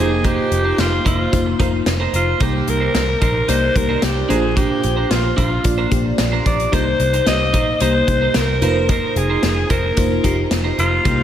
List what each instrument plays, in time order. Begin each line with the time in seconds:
Already playing: picked electric bass F1, fm electric piano A#3 D#4 F4, clean electric guitar D#4 A#4
0.00 alto saxophone G#4, fm electric piano C5
0.11 muted clean electric guitar stroke
0.24 clean electric guitar D#4 A#4 C5, alto saxophone G4, kick, closed hi-hat
0.51 picked electric bass F1, muted clean electric guitar stroke, closed hi-hat
0.64 clean electric guitar D#4 A#4 C5
0.78 picked electric bass F1, alto saxophone F4, snare, closed hi-hat
0.92 muted clean electric guitar stroke
1.05 picked electric bass F1, clean electric guitar D#4 A#4 C5, alto saxophone F4, kick, closed hi-hat
1.19 muted clean electric guitar stroke
1.32 picked electric bass F1, fm electric piano A#3 D#4 F4 C5, muted clean electric guitar stroke, kick, closed hi-hat
1.46 muted clean electric guitar stroke
1.59 picked electric bass F1, fm electric piano A#3 D#4 F4 C5, clean electric guitar D#4 A#4 C5, kick, closed hi-hat
1.73 muted clean electric guitar stroke
1.86 picked electric bass F1, muted clean electric guitar stroke, snare, closed hi-hat
2.00 clean electric guitar D#4 A#4 C5
2.13 picked electric bass F1, clean electric guitar D#4 A#4 C5, alto saxophone F4, closed hi-hat
2.27 muted clean electric guitar stroke
2.40 picked electric bass C2, fm electric piano C3 A#3 D#4 G4 C5, clean electric guitar D#4 A#4 C5, alto saxophone G4, kick, closed hi-hat
2.54 muted clean electric guitar stroke
2.67 picked electric bass C2, alto saxophone A#4, muted clean electric guitar stroke, closed hi-hat
2.81 clean electric guitar D#4 A#4 C5
2.95 picked electric bass C2, snare, closed hi-hat
3.08 muted clean electric guitar stroke
3.21 picked electric bass A#1, clean electric guitar D#4 A#4 C5, alto saxophone A#4, kick, closed hi-hat
3.35 muted clean electric guitar stroke
3.48 picked electric bass C2, fm electric piano A#3 D#4 G4 D5, clean electric guitar D#4 A#4 C5, alto saxophone C5, closed hi-hat
3.62 muted clean electric guitar stroke
3.75 picked electric bass C2, fm electric piano A#3 D#4 G4 C5, alto saxophone A#4, muted clean electric guitar stroke, kick, closed hi-hat
3.89 clean electric guitar D#4 A#4 C5
4.02 picked electric bass C2, alto saxophone G4, snare, closed hi-hat
4.16 muted clean electric guitar stroke
4.29 picked electric bass A#1, fm electric piano A#2 A#3 D4 F4 C5, clean electric guitar D4 A#4 C5, alto saxophone G#4, closed hi-hat
4.43 muted clean electric guitar stroke
4.56 clean electric guitar D4 A#4 C5, alto saxophone G4, kick, closed hi-hat
4.83 picked electric bass A#1, muted clean electric guitar stroke, closed hi-hat
4.96 clean electric guitar D4 A#4 C5
5.10 picked electric bass A#1, alto saxophone F4, muted clean electric guitar stroke, snare, closed hi-hat
5.23 muted clean electric guitar stroke
5.37 picked electric bass A#1, clean electric guitar D4 A#4 C5, alto saxophone F4, kick, closed hi-hat
5.51 muted clean electric guitar stroke
5.64 picked electric bass A#1, fm electric piano A#3 D4 F4 D5, muted clean electric guitar stroke, kick, closed hi-hat
5.78 clean electric guitar D4 A#4 C5
5.91 picked electric bass A#1, fm electric piano A#3 D4 F4 G4, kick, closed hi-hat
6.05 muted clean electric guitar stroke
6.18 picked electric bass A#1, muted clean electric guitar stroke, snare, closed hi-hat
6.32 clean electric guitar D4 A#4 C5
6.46 picked electric bass A#1, clean electric guitar D4 A#4 C5, alto saxophone D5, kick, closed hi-hat
6.59 muted clean electric guitar stroke, closed hi-hat
6.72 picked electric bass C2, fm electric piano C3 A#3 D#4 G4 C5, clean electric guitar D#4 A#4 C5, alto saxophone C5, kick, closed hi-hat
6.86 muted clean electric guitar stroke
7.00 picked electric bass C2, muted clean electric guitar stroke, closed hi-hat
7.13 clean electric guitar D#4 A#4 C5, closed hi-hat
7.26 picked electric bass C2, alto saxophone D#5, snare, closed hi-hat
7.40 muted clean electric guitar stroke
7.53 picked electric bass A#1, clean electric guitar D#4 A#4 C5, kick, closed hi-hat
7.67 muted clean electric guitar stroke
7.80 picked electric bass C2, fm electric piano A#3 D#4 G4 C5, clean electric guitar D#4 A#4 C5, alto saxophone C5, closed hi-hat
7.94 muted clean electric guitar stroke
8.07 picked electric bass C2, fm electric piano A#3 D#4 G4 C5, muted clean electric guitar stroke, kick, closed hi-hat
8.21 clean electric guitar D#4 A#4 C5
8.34 picked electric bass C2, alto saxophone A#4, snare, closed hi-hat
8.49 muted clean electric guitar stroke
8.61 picked electric bass F1, fm electric piano A#3 D#4 F4 B4, clean electric guitar D#4 A#4 C5, closed hi-hat
8.69 fm electric piano C5
8.76 muted clean electric guitar stroke
8.89 clean electric guitar D#4 A#4 C5, alto saxophone A#4, kick, closed hi-hat
9.16 picked electric bass F1, alto saxophone G#4, muted clean electric guitar stroke, closed hi-hat
9.30 clean electric guitar D#4 A#4 C5
9.43 picked electric bass F1, muted clean electric guitar stroke, snare, closed hi-hat
9.56 muted clean electric guitar stroke
9.70 picked electric bass F1, clean electric guitar D#4 A#4 C5, alto saxophone A#4, kick, closed hi-hat
9.84 muted clean electric guitar stroke
9.97 picked electric bass F1, fm electric piano A#3 D#4 F4 C5, muted clean electric guitar stroke, kick, closed hi-hat
10.11 muted clean electric guitar stroke
10.23 picked electric bass F1, fm electric piano A#3 D#4 F4 G4, clean electric guitar D#4 A#4 C5, kick, closed hi-hat
10.38 muted clean electric guitar stroke
10.51 picked electric bass F1, muted clean electric guitar stroke, snare, closed hi-hat
10.64 clean electric guitar D#4 A#4 C5
10.78 picked electric bass F1, clean electric guitar D#4 A#4 C5, alto saxophone F4, closed hi-hat
10.92 muted clean electric guitar stroke
11.05 picked electric bass C2, fm electric piano C3 A#3 D#4 G4 C5, clean electric guitar D#4 A#4 C5, kick, closed hi-hat
11.18 muted clean electric guitar stroke